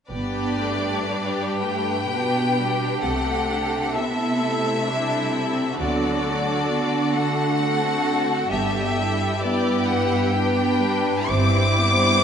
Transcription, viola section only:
0.11 0.55 B3 soft
0.11 2.05 D4 soft
0.59 1.09 A3 soft
1.10 1.61 G3 soft
1.61 2.09 A3 soft
2.10 2.55 B3 soft
2.10 3.02 D4 soft
2.57 3.03 G3 soft
3.04 3.97 A3 soft
3.04 3.51 C4 soft
3.50 3.97 D4 soft
3.97 4.42 B3 soft
3.97 4.88 E4 soft
4.43 4.88 A3 soft
4.88 5.79 G3 soft
4.88 5.34 D4 soft
5.34 5.79 C4 soft
5.79 6.70 F#3 soft
5.79 6.24 B3 soft
6.24 6.69 A3 soft
6.70 7.14 B3 soft
6.70 7.61 D4 soft
7.16 8.51 A3 soft
7.61 8.51 C4 soft
8.51 9.40 G3 soft
8.51 8.96 B3 soft
8.96 10.33 E4 soft
9.42 10.32 B3 soft
10.33 10.80 B3 soft
10.33 11.29 D4 soft
10.80 11.28 G3 soft
11.29 12.24 G3 soft
11.29 11.74 C4 soft
11.74 12.20 B3 soft
12.19 12.24 A3 soft

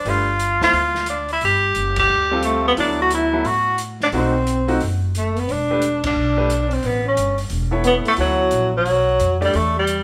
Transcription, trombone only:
2.45 2.64 A3 medium
2.68 2.73 B3 medium
2.80 2.99 D4 medium
3.01 3.11 F#4 medium
3.14 3.48 E4 medium
3.47 3.79 F#4 medium
4.03 4.08 D4 medium
4.15 4.86 C4 medium
5.16 5.39 A3 medium
5.38 5.52 B3 medium
5.50 6.04 D4 medium
6.05 6.72 D4 medium
6.70 6.86 C4 medium
6.84 7.04 B3 medium
7.05 7.36 C#4 medium
7.84 7.94 B3 medium
8.05 8.11 A3 medium
8.18 8.70 F#3 medium
8.75 9.38 F#3 medium
9.41 9.55 G3 medium
9.53 9.75 A3 medium
9.77 10.03 G3 medium

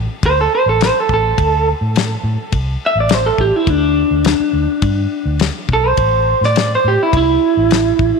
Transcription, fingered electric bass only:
0.23 0.46 D2 medium
0.66 0.89 A1 medium
1.09 1.32 A1 medium
1.38 1.72 D2 medium
1.81 2.15 A2 medium
2.24 2.36 A2 medium
2.52 2.75 C2 medium
2.95 3.29 A1 medium
3.38 3.50 A1 medium
3.67 4.02 D2 medium
4.11 4.34 D2 medium
4.40 muted fingered electric bass stroke soft
4.53 4.65 D2 medium
4.82 5.05 G2 loud
5.25 5.49 D2 medium
5.69 5.91 B1 medium
5.97 6.32 A1 medium
6.41 6.75 A2 medium
6.84 6.96 A2 medium
7.13 7.36 C2 medium
7.57 7.90 A1 medium
7.99 8.11 A1 medium

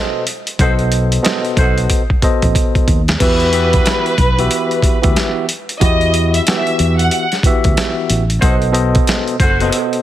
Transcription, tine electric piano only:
0.00 0.23 B2 loud
0.00 0.24 B3 medium
0.00 0.24 A4 medium
0.00 0.24 C5 medium
0.00 0.24 D#5 loud
0.61 1.21 B2 medium
0.61 1.22 B3 medium
0.61 1.22 A4 medium
0.61 1.22 C5 medium
0.61 1.23 D#5 loud
1.22 2.01 B2 medium
1.22 2.01 B3 medium
1.22 2.01 A4 medium
1.22 2.02 C5 medium
1.22 2.02 D#5 loud
2.22 3.00 B2 loud
2.22 3.00 B3 medium
2.22 3.00 A4 medium
2.22 3.00 C5 medium
2.22 3.01 D#5 loud
3.20 3.51 E3 loud
3.20 3.51 B3 medium
3.20 3.51 F#4 medium
3.20 3.51 G4 medium
3.20 3.52 E5 loud
3.52 4.14 E3 medium
3.52 4.14 B3 medium
3.52 4.14 F#4 medium
3.52 4.14 G4 medium
3.52 4.15 E5 loud
4.38 4.97 E3 medium
4.38 4.97 B3 medium
4.38 4.97 F#4 medium
4.38 4.98 G4 medium
4.38 4.98 E5 loud
5.02 5.45 E3 loud
5.02 5.45 B3 loud
5.02 5.45 F#4 medium
5.02 5.45 G4 medium
5.02 5.46 E5 loud
5.80 6.42 E3 medium
5.80 6.42 B3 medium
5.80 6.43 E4 loud
5.80 6.42 F#4 medium
5.80 6.43 G4 medium
6.48 7.24 E3 loud
6.48 7.25 B3 medium
6.48 7.25 F#4 medium
6.48 7.25 G4 medium
6.48 7.25 E5 loud
7.45 8.22 E3 loud
7.45 8.22 B3 medium
7.45 8.22 F#4 medium
7.45 8.23 G4 medium
7.45 8.23 E5 loud
8.43 8.71 B2 medium
8.43 8.71 B3 medium
8.43 8.71 A4 medium
8.43 8.72 C5 medium
8.43 8.72 D#5 loud
8.72 9.34 B2 loud
8.72 9.35 B3 medium
8.72 9.35 A4 medium
8.72 9.35 C5 medium
8.72 9.35 D#5 loud
9.60 10.02 B2 loud
9.60 10.02 B3 medium
9.60 10.02 A4 medium
9.60 10.02 C5 medium
9.60 10.02 D#5 loud

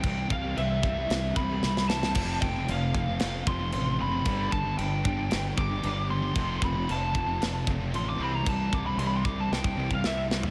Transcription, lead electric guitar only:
0.00 0.27 G5 loud
0.32 0.57 F5 medium
0.58 1.33 E5 medium
1.37 1.85 B5 loud
1.89 2.38 A5 loud
2.42 2.67 G5 medium
2.71 3.45 F5 medium
3.48 3.96 C6 loud
4.02 4.50 B5 loud
4.52 4.77 A5 loud
4.78 5.53 G5 loud
5.59 6.07 D6 loud
6.11 6.59 C6 loud
6.65 6.89 B5 loud
6.91 7.65 A5 loud
7.96 8.08 C6 loud
8.09 8.21 D6 loud
8.23 8.35 B5 loud
8.35 8.47 A#5 medium
8.49 8.73 A5 medium
8.74 8.86 D6 loud
8.86 8.99 B5 loud
8.99 9.07 C6 loud
9.07 9.16 B5 loud
9.17 9.25 C6 loud
9.25 9.38 D6 loud
9.40 9.52 A5 medium
9.53 9.89 G5 loud
9.95 10.06 F5 medium
10.07 10.22 E5 loud

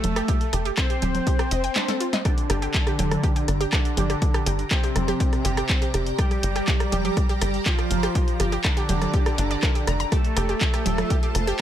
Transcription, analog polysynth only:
0.00 0.68 A3 medium
0.00 0.68 A4 loud
0.78 2.15 C4 medium
0.78 2.15 C5 loud
2.25 3.63 D3 medium
2.25 3.63 D4 loud
3.73 4.61 D3 medium
3.73 4.61 D4 loud
4.71 6.09 C3 medium
4.71 6.09 C4 loud
6.19 7.56 G3 medium
6.19 7.56 G4 loud
7.66 8.55 F3 medium
7.66 8.55 F4 loud
8.64 10.02 D3 medium
8.64 10.02 D4 loud
10.12 11.50 A3 medium
10.12 11.50 A4 loud

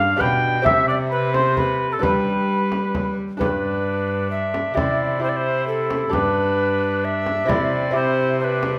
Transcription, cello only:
0.00 0.19 G2 medium
0.20 0.67 B2 medium
0.66 2.02 C3 medium
2.03 3.18 G3 medium
3.41 4.73 G2 medium
4.77 6.11 C3 medium
6.13 7.47 G2 medium
7.49 8.79 C3 medium

